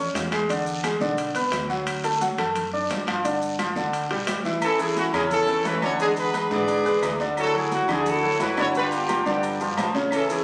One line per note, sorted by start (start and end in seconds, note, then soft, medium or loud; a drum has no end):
0.00 0.11 E2 medium
0.00 0.26 C#4 medium
0.00 0.26 C#5 medium
0.00 0.26 C#6 medium
0.14 0.95 E2 loud
0.14 high conga loud
0.14 high timbale medium
0.14 low timbale medium
0.14 short guiro medium
0.14 maracas medium
0.32 0.46 G#3 medium
0.32 0.46 G#4 medium
0.32 0.46 G#5 medium
0.32 high conga medium
0.32 high timbale medium
0.32 short guiro medium
0.32 claves medium
0.32 maracas soft
0.49 0.78 D3 medium
0.49 0.78 D4 medium
0.49 0.78 D5 medium
0.49 high conga soft
0.49 high timbale medium
0.49 long guiro medium
0.49 maracas medium
0.67 high conga soft
0.67 maracas medium
0.83 0.98 G#3 medium
0.83 0.98 G#4 medium
0.83 0.98 G#5 medium
0.83 high conga medium
0.83 high timbale medium
0.83 low timbale soft
0.83 short guiro medium
0.83 claves medium
0.83 maracas medium
1.01 1.33 B1 loud
1.01 1.29 D3 medium
1.01 1.29 D4 medium
1.01 1.29 D5 medium
1.01 high conga medium
1.01 short guiro medium
1.01 maracas soft
1.18 high conga soft
1.18 high timbale medium
1.18 long guiro medium
1.18 maracas medium
1.35 1.51 C#2 medium
1.35 1.64 B3 medium
1.35 1.64 B4 medium
1.35 1.64 B5 medium
1.35 high conga soft
1.35 high timbale medium
1.35 maracas medium
1.52 2.33 D2 loud
1.52 high conga medium
1.52 high timbale loud
1.52 low timbale medium
1.52 short guiro medium
1.52 claves medium
1.52 maracas medium
1.69 1.98 F#3 medium
1.69 1.98 F#4 medium
1.69 1.98 F#5 medium
1.69 high conga medium
1.69 short guiro medium
1.69 maracas soft
1.87 high conga soft
1.87 high timbale medium
1.87 long guiro medium
1.87 claves medium
1.87 maracas medium
2.04 2.18 A3 medium
2.04 2.18 A4 medium
2.04 2.18 A5 medium
2.04 high conga soft
2.04 high timbale medium
2.04 maracas medium
2.21 2.35 F#3 medium
2.21 2.35 F#4 medium
2.21 2.36 F#5 medium
2.21 high conga medium
2.21 low timbale medium
2.21 short guiro medium
2.21 maracas medium
2.38 2.86 F#2 loud
2.38 2.67 A3 medium
2.38 2.67 A4 medium
2.38 2.67 A5 medium
2.38 low conga medium
2.38 high timbale medium
2.38 short guiro medium
2.38 claves medium
2.38 maracas soft
2.55 high conga soft
2.55 low conga medium
2.55 high timbale medium
2.55 long guiro medium
2.55 maracas medium
2.73 3.01 D4 medium
2.73 3.01 D5 medium
2.73 3.02 D6 medium
2.73 high conga soft
2.90 3.70 G2 medium
2.90 high conga medium
2.90 high timbale medium
2.90 low timbale medium
2.90 short guiro medium
2.90 maracas medium
3.07 3.21 F3 medium
3.07 3.22 F4 medium
3.07 3.22 F5 medium
3.07 high conga medium
3.07 high timbale medium
3.07 short guiro medium
3.07 claves medium
3.07 maracas soft
3.24 3.53 D3 medium
3.24 3.53 D4 medium
3.24 3.53 D5 medium
3.24 high conga soft
3.24 high timbale medium
3.24 long guiro medium
3.24 maracas medium
3.42 high conga soft
3.42 maracas medium
3.59 3.73 F3 medium
3.59 3.73 F4 medium
3.59 3.73 F5 medium
3.59 high conga medium
3.59 high timbale medium
3.59 low timbale soft
3.59 short guiro medium
3.59 claves medium
3.59 maracas medium
3.76 4.08 D2 loud
3.76 4.04 D3 medium
3.76 4.04 D4 medium
3.76 4.05 D5 medium
3.76 high conga medium
3.76 short guiro medium
3.76 maracas soft
3.93 high conga soft
3.93 high timbale medium
3.93 long guiro medium
3.93 maracas medium
4.10 4.26 B1 medium
4.10 4.39 G3 medium
4.10 4.39 G4 medium
4.10 4.39 G5 medium
4.10 high conga soft
4.10 high timbale medium
4.27 5.08 A1 medium
4.27 high conga loud
4.27 high timbale loud
4.27 low timbale medium
4.27 short guiro medium
4.27 claves medium
4.27 maracas medium
4.45 4.59 E3 medium
4.45 4.59 E4 medium
4.45 4.60 E5 medium
4.45 high conga medium
4.45 short guiro medium
4.45 maracas soft
4.62 4.90 E3 medium
4.62 5.28 C#4 medium
4.62 5.28 E4 medium
4.62 4.79 A4 loud
4.62 high conga soft
4.62 low agogo loud
4.62 long guiro medium
4.62 claves medium
4.62 maracas medium
4.79 5.08 E3 medium
4.79 5.08 E4 medium
4.79 4.96 G#4 medium
4.79 5.08 A4 medium
4.79 maracas medium
4.96 5.05 F#4 loud
4.96 high conga loud
4.96 low timbale medium
4.96 low agogo medium
4.96 short guiro medium
4.96 maracas medium
5.13 5.61 E2 loud
5.13 5.42 C#3 medium
5.13 5.42 C#4 loud
5.13 5.22 G#4 medium
5.13 5.42 C#5 medium
5.13 low conga medium
5.13 low agogo loud
5.13 short guiro medium
5.13 claves medium
5.13 maracas soft
5.31 5.96 C#4 medium
5.31 5.96 E4 medium
5.31 5.63 A4 loud
5.31 high conga soft
5.31 low conga medium
5.31 long guiro medium
5.31 maracas medium
5.48 5.76 E3 medium
5.48 5.76 E4 medium
5.48 5.76 A4 medium
5.48 maracas medium
5.65 6.45 E2 medium
5.65 5.83 E3 medium
5.65 5.81 B4 medium
5.65 high conga medium
5.65 low timbale loud
5.65 low agogo medium
5.65 short guiro medium
5.65 maracas medium
5.82 5.97 D3 loud
5.82 5.97 D4 loud
5.82 5.99 C#5 loud
5.82 5.97 D5 medium
5.82 high conga medium
5.82 low agogo loud
5.82 short guiro medium
5.82 claves medium
5.82 maracas soft
5.99 6.28 D3 medium
5.99 6.28 G#3 medium
5.99 6.65 B3 medium
5.99 6.28 D4 medium
5.99 6.17 D4 medium
5.99 6.08 G#4 loud
5.99 6.28 D5 medium
5.99 long guiro medium
5.99 maracas medium
6.17 6.82 D4 medium
6.17 6.51 G#4 medium
6.17 6.49 B4 loud
6.17 high conga soft
6.17 low agogo medium
6.17 maracas medium
6.33 6.48 G#3 medium
6.33 6.48 G#4 medium
6.33 6.48 B4 medium
6.33 high conga medium
6.33 low timbale medium
6.33 low agogo loud
6.33 short guiro medium
6.33 claves medium
6.33 maracas medium
6.51 6.83 G#2 loud
6.51 6.79 D3 medium
6.51 6.79 E3 medium
6.51 6.79 D4 loud
6.51 7.16 G#4 medium
6.51 7.17 B4 medium
6.51 6.79 D5 medium
6.51 7.16 D5 loud
6.51 high conga medium
6.51 short guiro medium
6.51 maracas soft
6.68 low agogo medium
6.68 long guiro medium
6.68 maracas medium
6.85 7.01 E2 medium
6.85 7.14 G#3 medium
6.85 7.14 G#4 medium
6.85 7.14 B4 medium
6.85 maracas medium
7.02 7.83 D2 loud
7.02 7.21 E3 medium
7.02 high conga loud
7.02 low timbale medium
7.02 low agogo loud
7.02 short guiro medium
7.02 claves medium
7.02 maracas medium
7.20 7.48 D3 medium
7.20 7.48 D4 loud
7.20 7.48 D5 medium
7.20 high conga medium
7.20 short guiro medium
7.20 maracas soft
7.37 7.66 F#3 medium
7.37 8.03 E4 medium
7.37 7.73 F#4 medium
7.37 7.54 A4 loud
7.37 high conga soft
7.37 low agogo loud
7.37 long guiro medium
7.37 claves medium
7.37 maracas medium
7.54 7.82 F#3 medium
7.54 7.82 F#4 medium
7.54 7.72 G#4 medium
7.54 7.83 A4 medium
7.72 7.89 F#4 loud
7.72 high conga loud
7.72 low timbale medium
7.72 low agogo medium
7.72 short guiro medium
7.72 maracas medium
7.88 8.36 D2 loud
7.88 8.17 D3 medium
7.88 8.17 D4 medium
7.88 8.07 G#4 medium
7.88 8.17 D5 medium
7.88 low conga medium
7.88 low agogo loud
7.88 short guiro medium
7.88 claves medium
7.88 maracas soft
8.06 8.72 E4 medium
8.06 8.72 F#4 medium
8.06 8.41 A4 loud
8.06 high conga soft
8.06 low conga medium
8.06 long guiro medium
8.06 maracas medium
8.23 8.51 F#3 medium
8.23 8.51 F#4 medium
8.23 8.51 A4 medium
8.23 high conga soft
8.40 9.20 G1 loud
8.40 8.59 E3 medium
8.40 8.57 B4 medium
8.40 high conga loud
8.40 low timbale medium
8.40 low agogo medium
8.40 short guiro medium
8.40 maracas medium
8.57 8.71 D3 loud
8.57 8.71 D4 loud
8.57 8.67 C#5 loud
8.57 8.72 D5 medium
8.57 high conga medium
8.57 low agogo loud
8.57 short guiro medium
8.57 claves medium
8.57 maracas soft
8.75 9.03 D3 medium
8.75 9.03 G3 loud
8.75 9.03 D4 medium
8.75 8.93 D4 medium
8.75 9.40 F4 medium
8.75 8.84 B4 loud
8.75 9.03 D5 medium
8.75 high conga soft
8.75 long guiro medium
8.75 maracas medium
8.92 9.26 B3 medium
8.92 9.26 D4 medium
8.92 9.25 G4 medium
8.92 high conga soft
8.92 low agogo medium
8.92 maracas medium
9.09 9.23 F3 medium
9.09 9.23 F4 medium
9.09 9.23 G4 medium
9.09 high conga loud
9.09 low timbale medium
9.09 low agogo loud
9.09 short guiro medium
9.09 claves medium
9.09 maracas medium
9.25 9.74 G2 loud
9.25 9.54 D3 medium
9.25 9.55 F3 medium
9.25 9.92 B3 medium
9.25 9.54 D4 loud
9.25 9.92 D4 medium
9.25 9.66 G4 medium
9.25 9.54 D5 medium
9.25 high conga medium
9.25 short guiro medium
9.25 maracas soft
9.43 low agogo medium
9.43 long guiro medium
9.43 maracas medium
9.60 9.88 F3 medium
9.60 9.89 F4 medium
9.60 9.89 G4 medium
9.60 maracas medium
9.77 10.44 A2 medium
9.77 9.96 F3 medium
9.77 high conga loud
9.77 low timbale medium
9.77 low agogo loud
9.77 short guiro medium
9.77 claves medium
9.77 maracas medium
9.94 10.23 C#3 medium
9.94 10.23 C#4 medium
9.94 10.23 C#5 medium
9.94 high conga medium
9.94 short guiro medium
9.94 maracas soft
10.11 10.40 E3 medium
10.11 10.44 C#4 medium
10.11 10.44 E4 medium
10.11 10.29 A4 loud
10.11 high conga soft
10.11 low agogo loud
10.11 long guiro medium
10.11 claves medium
10.11 maracas medium
10.29 10.44 E3 medium
10.29 10.44 E4 medium
10.29 10.44 G#4 medium
10.29 10.44 A4 medium
10.29 high conga soft
10.29 maracas medium